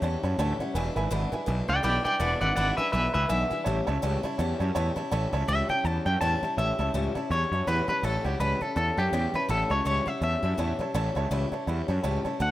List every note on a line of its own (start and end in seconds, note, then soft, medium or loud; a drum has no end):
0.02 0.15 E2 medium
0.02 0.23 E3 medium
0.02 0.24 G3 medium
0.02 0.23 C#4 medium
0.02 0.22 E4 medium
0.02 0.15 C#5 medium
0.02 0.16 E5 medium
0.02 0.16 A5 medium
0.23 0.33 F#2 medium
0.23 0.38 G3 medium
0.23 0.39 C#4 medium
0.23 0.39 E4 medium
0.23 0.33 C#5 medium
0.23 0.33 E5 medium
0.23 0.33 A5 medium
0.38 0.51 D2 medium
0.38 0.60 A2 loud
0.38 0.60 E3 medium
0.38 0.61 G3 medium
0.38 0.60 C#4 medium
0.38 0.59 E4 loud
0.38 0.52 C#5 loud
0.38 0.52 E5 loud
0.38 0.52 A5 loud
0.59 0.76 G3 medium
0.59 0.76 C#4 medium
0.59 0.75 E4 medium
0.59 0.69 C#5 medium
0.59 0.69 E5 medium
0.59 0.70 F#5 loud
0.59 muted picked electric bass stroke medium
0.74 0.88 E1 medium
0.74 0.96 E2 medium
0.74 0.97 B2 medium
0.74 0.97 E3 medium
0.74 0.96 G#3 loud
0.74 0.95 D4 loud
0.74 0.95 E4 loud
0.74 0.88 B4 loud
0.74 0.88 E5 loud
0.74 0.88 G#5 loud
0.96 1.06 G#1 medium
0.96 1.10 E3 soft
0.96 1.10 G#3 medium
0.96 1.11 D4 medium
0.96 1.11 E4 medium
0.96 1.05 B4 loud
0.96 1.06 E5 loud
0.96 1.06 G#5 loud
1.11 1.24 G#1 medium
1.11 1.32 E2 medium
1.11 1.32 B2 loud
1.11 1.32 E3 loud
1.11 1.32 G#3 loud
1.11 1.31 D4 loud
1.11 1.31 E4 loud
1.11 1.24 B4 medium
1.11 1.24 E5 medium
1.11 1.25 B5 loud
1.32 1.45 E3 medium
1.32 1.46 G#3 medium
1.32 1.47 D4 medium
1.32 1.47 E4 medium
1.32 1.42 B4 medium
1.32 1.42 E5 medium
1.32 1.42 G#5 loud
1.32 muted picked electric bass stroke medium
1.46 1.61 B1 loud
1.46 1.68 E3 medium
1.46 1.68 G#3 medium
1.46 1.67 D4 medium
1.46 1.67 E4 medium
1.46 1.60 B4 medium
1.46 1.60 E5 medium
1.46 1.61 G#5 medium
1.68 1.78 C#2 loud
1.68 1.82 E3 soft
1.68 1.83 G#3 soft
1.68 1.83 D4 soft
1.68 1.83 E4 soft
1.68 1.78 B4 medium
1.68 1.83 D5 medium
1.68 1.78 E5 medium
1.68 1.84 G5 loud
1.68 1.78 G#5 medium
1.83 1.97 B1 loud
1.83 2.05 E2 medium
1.83 2.05 B2 medium
1.83 2.05 E3 medium
1.83 2.05 G#3 medium
1.83 2.04 D4 medium
1.83 2.04 E4 medium
1.83 1.97 B4 loud
1.83 2.03 D5 medium
1.83 1.97 E5 medium
1.83 2.04 G5 loud
1.83 1.97 B5 loud
2.04 2.19 E3 medium
2.04 2.19 G#3 medium
2.04 2.20 D4 medium
2.04 2.20 E4 medium
2.04 2.14 B4 medium
2.04 2.19 D5 medium
2.04 2.15 E5 medium
2.04 2.21 G5 medium
2.04 2.15 G#5 medium
2.04 muted picked electric bass stroke medium
2.20 2.33 E1 loud
2.20 2.41 E2 medium
2.20 2.42 B2 medium
2.20 2.42 E3 medium
2.20 2.41 G#3 medium
2.20 2.40 D4 medium
2.20 2.40 E4 medium
2.20 2.33 B4 loud
2.20 2.40 D5 medium
2.20 2.33 E5 medium
2.20 2.40 F#5 medium
2.20 2.33 G#5 loud
2.41 2.51 G#1 loud
2.41 2.55 E3 soft
2.41 2.56 G#3 medium
2.41 2.56 D4 medium
2.41 2.56 E4 medium
2.41 2.50 B4 loud
2.41 2.54 D5 medium
2.41 2.51 E5 medium
2.41 2.55 F#5 medium
2.41 2.51 F#5 loud
2.56 2.70 G#1 medium
2.56 2.78 E2 medium
2.56 2.78 B2 medium
2.56 2.78 E3 medium
2.56 2.78 G#3 medium
2.56 2.77 D4 loud
2.56 2.76 E4 loud
2.56 2.69 B4 medium
2.56 2.76 D5 medium
2.56 2.70 E5 medium
2.56 2.77 F#5 medium
2.56 2.70 B5 medium
2.77 2.92 E3 medium
2.77 2.92 G#3 medium
2.77 2.93 D4 medium
2.77 2.93 E4 medium
2.77 2.91 B4 medium
2.77 2.87 B4 medium
2.77 2.91 E5 loud
2.77 2.87 E5 medium
2.77 2.87 G#5 medium
2.77 muted picked electric bass stroke medium
2.92 3.07 B1 medium
2.92 3.14 E3 medium
2.92 3.14 G#3 medium
2.92 3.13 D4 medium
2.92 3.13 E4 medium
2.92 3.13 B4 medium
2.92 3.06 B4 medium
2.92 3.06 E5 medium
2.92 3.13 E5 loud
2.92 3.06 G#5 medium
3.14 3.24 C#2 loud
3.14 3.28 E3 soft
3.14 3.29 G#3 medium
3.14 3.29 D4 soft
3.14 3.29 E4 medium
3.14 3.23 B4 medium
3.14 3.28 B4 medium
3.14 3.24 E5 medium
3.14 3.28 E5 loud
3.14 3.24 G#5 medium
3.29 3.43 B1 medium
3.29 3.51 E2 medium
3.29 3.51 B2 medium
3.29 3.51 E3 medium
3.29 3.50 G#3 medium
3.29 3.50 D4 medium
3.29 3.49 E4 medium
3.29 3.42 B4 loud
3.29 3.42 E5 medium
3.29 4.36 E5 loud
3.29 3.42 G#5 loud
3.50 3.65 E3 medium
3.50 3.66 G#3 medium
3.50 3.66 D4 medium
3.50 3.66 E4 medium
3.50 3.60 B4 medium
3.50 3.60 E5 medium
3.50 3.60 G#5 medium
3.50 muted picked electric bass stroke medium
3.64 3.79 A1 loud
3.64 3.87 A2 medium
3.64 3.88 E3 medium
3.64 3.88 G3 loud
3.64 3.87 C#4 medium
3.64 3.86 E4 medium
3.64 3.78 C#5 loud
3.64 3.78 E5 medium
3.64 3.79 A5 loud
3.87 3.97 C#2 loud
3.87 4.02 G3 medium
3.87 4.02 C#4 medium
3.87 4.03 E4 medium
3.87 3.96 C#5 loud
3.87 3.97 E5 loud
3.87 3.97 A5 loud
4.02 4.16 C#2 medium
4.02 4.24 A2 loud
4.02 4.24 E3 loud
4.02 4.24 G3 loud
4.02 4.23 C#4 loud
4.02 4.22 E4 loud
4.02 4.15 C#5 loud
4.02 4.15 E5 medium
4.02 4.16 A5 loud
4.23 4.38 G3 medium
4.23 4.39 C#4 medium
4.23 4.39 E4 medium
4.23 4.33 C#5 medium
4.23 4.33 E5 medium
4.23 4.34 A5 loud
4.23 muted picked electric bass stroke medium
4.38 4.52 E2 medium
4.38 4.60 E3 medium
4.38 4.61 G3 medium
4.38 4.60 C#4 medium
4.38 4.59 E4 medium
4.38 4.52 C#5 medium
4.38 4.52 E5 medium
4.38 4.52 A5 loud
4.60 4.70 F#2 loud
4.60 4.75 G3 soft
4.60 4.75 C#4 medium
4.60 4.76 E4 medium
4.60 4.69 C#5 medium
4.60 4.70 E5 medium
4.60 4.70 A5 loud
4.75 4.89 E2 loud
4.75 4.97 A2 medium
4.75 4.97 E3 loud
4.75 4.96 G3 loud
4.75 4.96 C#4 medium
4.75 4.95 E4 loud
4.75 4.88 C#5 loud
4.75 4.88 E5 loud
4.75 4.89 A5 loud
4.96 5.11 G3 medium
4.96 5.11 C#4 medium
4.96 5.12 E4 medium
4.96 5.06 C#5 medium
4.96 5.06 E5 medium
4.96 5.06 A5 loud
4.96 muted picked electric bass stroke medium
5.11 5.25 A1 medium
5.11 5.33 A2 medium
5.11 5.33 E3 loud
5.11 5.33 G3 medium
5.11 5.33 C#4 medium
5.11 5.31 E4 medium
5.11 5.25 C#5 loud
5.11 5.25 E5 loud
5.11 5.25 A5 loud
5.33 5.42 C#2 loud
5.33 5.47 G3 soft
5.33 5.48 C#4 medium
5.33 5.48 E4 medium
5.33 5.42 C#5 loud
5.33 5.43 E5 loud
5.33 5.43 A5 loud
5.48 5.61 C#2 medium
5.48 5.69 A2 medium
5.48 5.70 E3 medium
5.48 5.70 G3 medium
5.48 5.69 C#4 loud
5.48 5.68 E4 medium
5.48 5.61 C#5 medium
5.48 5.69 E5 loud
5.48 5.61 E5 medium
5.48 5.62 G5 medium
5.69 5.84 G3 soft
5.69 5.85 C#4 medium
5.69 5.85 E4 medium
5.69 5.79 C#5 medium
5.69 5.79 E5 medium
5.69 5.85 G5 loud
5.69 5.79 A5 medium
5.69 muted picked electric bass stroke medium
5.85 5.98 E2 medium
5.85 6.06 E3 medium
5.85 6.06 G3 medium
5.85 6.06 C#4 medium
5.85 6.05 E4 medium
5.85 5.98 C#5 medium
5.85 5.98 E5 medium
5.85 6.05 A5 loud
5.85 5.98 B5 medium
6.05 6.15 F#2 loud
6.05 6.20 G3 soft
6.05 6.21 C#4 soft
6.05 6.21 E4 medium
6.05 6.15 C#5 medium
6.05 6.15 E5 medium
6.05 6.20 G5 loud
6.05 6.15 A5 medium
6.21 6.34 E2 loud
6.21 6.43 A2 medium
6.21 6.43 E3 medium
6.21 6.43 G3 medium
6.21 6.43 C#4 loud
6.21 6.42 E4 loud
6.21 6.34 C#5 loud
6.21 6.34 E5 medium
6.21 6.35 G5 loud
6.21 6.56 A5 loud
6.42 6.58 G3 medium
6.42 6.58 C#4 medium
6.42 6.58 E4 medium
6.42 6.52 C#5 medium
6.42 6.52 E5 medium
6.42 6.52 A5 medium
6.42 muted picked electric bass stroke medium
6.57 6.71 A1 medium
6.57 6.79 A2 medium
6.57 6.79 E3 medium
6.57 6.80 G3 medium
6.57 6.79 C#4 medium
6.57 6.77 E4 medium
6.57 6.70 C#5 medium
6.57 6.71 E5 medium
6.57 7.31 E5 loud
6.57 6.71 A5 loud
6.79 6.88 C#2 medium
6.79 6.94 G3 soft
6.79 6.94 C#4 medium
6.79 6.94 E4 medium
6.79 6.88 C#5 medium
6.79 6.88 E5 medium
6.79 6.89 A5 loud
6.94 7.07 C#2 medium
6.94 7.15 A2 medium
6.94 7.16 E3 medium
6.94 7.16 G3 medium
6.94 7.15 C#4 medium
6.94 7.14 E4 medium
6.94 7.07 C#5 medium
6.94 7.07 E5 medium
6.94 7.08 A5 medium
7.15 7.31 G3 medium
7.15 7.31 C#4 medium
7.15 7.31 E4 medium
7.15 7.24 C#5 medium
7.15 7.25 E5 medium
7.15 7.25 A5 loud
7.15 muted picked electric bass stroke medium
7.30 7.44 E2 medium
7.30 7.52 E3 medium
7.30 7.53 G3 medium
7.30 7.52 C#4 medium
7.30 7.51 E4 medium
7.30 7.44 C#5 medium
7.30 7.69 C#5 medium
7.30 7.44 E5 medium
7.30 7.44 A5 medium
7.52 7.61 F#2 medium
7.52 7.67 G3 soft
7.52 7.67 C#4 medium
7.52 7.67 E4 medium
7.52 7.61 C#5 medium
7.52 7.61 E5 medium
7.52 7.62 A5 medium
7.67 7.80 E2 medium
7.67 7.88 A2 medium
7.67 7.89 E3 medium
7.67 7.89 G3 medium
7.67 7.87 C#4 medium
7.67 7.87 E4 medium
7.67 7.88 B4 loud
7.67 7.80 C#5 medium
7.67 7.80 E5 medium
7.67 7.80 F#5 loud
7.88 8.03 G3 medium
7.88 8.03 C#4 medium
7.88 8.03 E4 medium
7.88 8.04 B4 loud
7.88 7.98 C#5 medium
7.88 7.98 E5 medium
7.88 7.98 A5 medium
7.88 muted picked electric bass stroke medium
8.03 8.16 A1 medium
8.03 8.25 A2 medium
8.03 8.25 E3 medium
8.03 8.25 G3 medium
8.03 8.24 C#4 medium
8.03 8.23 E4 medium
8.03 8.25 A4 loud
8.03 8.16 C#5 medium
8.03 8.17 E5 medium
8.03 8.17 A5 medium
8.24 8.34 C#2 medium
8.24 8.39 G3 soft
8.24 8.40 C#4 medium
8.24 8.40 E4 medium
8.24 8.40 G4 medium
8.24 8.34 C#5 medium
8.24 8.34 E5 medium
8.24 8.34 F#5 loud
8.40 8.53 C#2 medium
8.40 8.61 A2 medium
8.40 8.61 E3 medium
8.40 8.62 G3 medium
8.40 8.61 C#4 medium
8.40 8.60 E4 medium
8.40 8.62 B4 medium
8.40 8.53 C#5 medium
8.40 8.53 E5 medium
8.40 8.53 A5 medium
8.61 8.75 G3 soft
8.61 8.76 C#4 medium
8.61 8.76 E4 medium
8.61 8.76 A4 loud
8.61 8.70 C#5 medium
8.61 8.71 E5 medium
8.61 8.71 A5 medium
8.61 muted picked electric bass stroke medium
8.76 8.89 E2 medium
8.76 8.97 E3 medium
8.76 8.98 G3 medium
8.76 8.97 C#4 medium
8.76 8.96 E4 medium
8.76 8.99 A4 loud
8.76 8.89 C#5 medium
8.76 8.90 E5 medium
8.76 8.90 A5 medium
8.97 9.07 F#2 medium
8.97 9.12 G3 medium
8.97 9.12 C#4 soft
8.97 9.13 E4 medium
8.97 9.36 G4 medium
8.97 9.07 C#5 medium
8.97 9.07 E5 medium
8.97 9.07 A5 medium
9.12 9.26 E2 loud
9.12 9.34 A2 medium
9.12 9.34 E3 medium
9.12 9.34 G3 medium
9.12 9.34 C#4 medium
9.12 9.32 E4 medium
9.12 9.26 C#5 medium
9.12 9.26 E5 medium
9.12 9.26 G5 loud
9.34 9.48 G3 medium
9.34 9.48 C#4 medium
9.34 9.49 E4 medium
9.34 9.50 B4 medium
9.34 9.44 C#5 medium
9.34 9.44 E5 medium
9.34 9.44 A5 medium
9.34 muted picked electric bass stroke medium
9.49 9.62 A1 medium
9.49 9.70 A2 medium
9.49 9.71 E3 medium
9.49 9.71 G3 medium
9.49 9.70 C#4 medium
9.49 9.69 E4 medium
9.49 9.72 A4 medium
9.49 9.62 C#5 medium
9.49 9.63 E5 medium
9.49 9.63 F#5 loud
9.70 9.80 C#2 loud
9.70 9.85 G3 soft
9.70 9.85 C#4 soft
9.70 9.86 E4 medium
9.70 9.80 C#5 loud
9.70 9.86 C#5 medium
9.70 9.80 E5 medium
9.70 9.80 A5 loud
9.85 9.99 C#2 medium
9.85 10.07 A2 medium
9.85 10.07 E3 medium
9.85 10.07 G3 medium
9.85 10.06 C#4 medium
9.85 10.04 E4 medium
9.85 9.98 C#5 medium
9.85 10.08 C#5 medium
9.85 9.98 E5 medium
10.06 10.21 G3 medium
10.06 10.22 C#4 medium
10.06 10.22 E4 medium
10.06 10.16 C#5 medium
10.06 10.16 E5 medium
10.06 10.22 E5 medium
10.06 10.16 F#5 medium
10.06 muted picked electric bass stroke medium
10.21 10.35 E2 medium
10.21 10.43 E3 medium
10.21 10.43 G3 medium
10.21 10.42 C#4 medium
10.21 10.41 E4 medium
10.21 10.35 C#5 medium
10.21 10.35 E5 medium
10.21 11.28 E5 medium
10.21 10.35 A5 medium
10.43 10.52 F#2 loud
10.43 10.57 G3 soft
10.43 10.58 C#4 medium
10.43 10.58 E4 medium
10.43 10.53 C#5 medium
10.43 10.53 E5 medium
10.43 10.53 A5 medium
10.58 10.71 E2 medium
10.58 10.79 A2 medium
10.58 10.80 E3 medium
10.58 10.79 G3 medium
10.58 10.78 C#4 medium
10.58 10.78 E4 medium
10.58 10.72 C#5 loud
10.58 10.72 E5 medium
10.58 10.72 A5 loud
10.79 10.94 G3 medium
10.79 10.94 C#4 medium
10.79 10.95 E4 medium
10.79 10.89 C#5 medium
10.79 10.90 E5 medium
10.79 10.90 A5 medium
10.79 muted picked electric bass stroke medium
10.94 11.08 A1 loud
10.94 11.16 A2 medium
10.94 11.16 E3 medium
10.94 11.16 G3 medium
10.94 11.15 C#4 loud
10.94 11.14 E4 loud
10.94 11.08 C#5 loud
10.94 11.08 E5 loud
10.94 11.08 A5 loud
11.15 11.25 C#2 medium
11.15 11.30 G3 medium
11.15 11.30 C#4 medium
11.15 11.31 E4 medium
11.15 11.25 C#5 loud
11.15 11.26 E5 loud
11.15 11.26 A5 loud
11.31 11.44 C#2 medium
11.31 11.52 A2 loud
11.31 11.53 E3 medium
11.31 11.53 G3 loud
11.31 11.52 C#4 loud
11.31 11.51 E4 loud
11.31 11.44 C#5 medium
11.31 11.45 E5 medium
11.31 11.45 B5 loud
11.52 11.67 G3 medium
11.52 11.67 C#4 medium
11.52 11.68 E4 medium
11.52 11.62 C#5 medium
11.52 11.62 E5 medium
11.52 11.62 A5 medium
11.52 muted picked electric bass stroke medium
11.67 11.81 E2 medium
11.67 11.89 E3 medium
11.67 11.89 G3 medium
11.67 11.88 C#4 medium
11.67 11.87 E4 medium
11.67 11.80 C#5 medium
11.67 11.80 E5 medium
11.67 11.81 B5 medium
11.88 11.98 F#2 medium
11.88 12.03 G3 soft
11.88 12.03 C#4 medium
11.88 12.04 E4 medium
11.88 11.98 C#5 medium
11.88 11.98 E5 medium
11.88 11.98 A5 loud
12.03 12.17 C#2 medium
12.03 12.25 A2 medium
12.03 12.25 E3 medium
12.03 12.25 G3 medium
12.03 12.24 C#4 medium
12.03 12.23 E4 medium
12.03 12.17 C#5 loud
12.03 12.17 E5 loud
12.03 12.17 A5 loud
12.24 12.40 G3 medium
12.24 12.40 C#4 medium
12.24 12.40 E4 medium
12.24 12.34 C#5 medium
12.24 12.34 E5 medium
12.24 12.34 A5 loud
12.24 muted picked electric bass stroke medium
12.39 12.51 D2 medium
12.39 12.51 D3 medium
12.39 12.51 A3 medium
12.39 12.51 C4 medium
12.39 12.51 F#4 medium
12.39 12.51 D5 medium
12.39 12.51 F#5 medium
12.39 12.51 F#5 loud
12.39 12.51 A5 loud